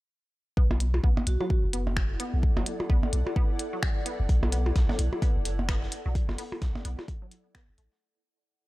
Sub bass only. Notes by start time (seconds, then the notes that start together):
0.57 B1
1.04 B1
1.27 B1
1.64 F#1
2.34 B1
2.57 F#1
2.90 B1
3.13 B1
4.20 F#1
4.29 B1
4.76 B1
4.99 B1
5.36 F#1
6.06 B1
6.29 F#1
6.62 B1
6.85 B1
7.69 F#1
7.78 A1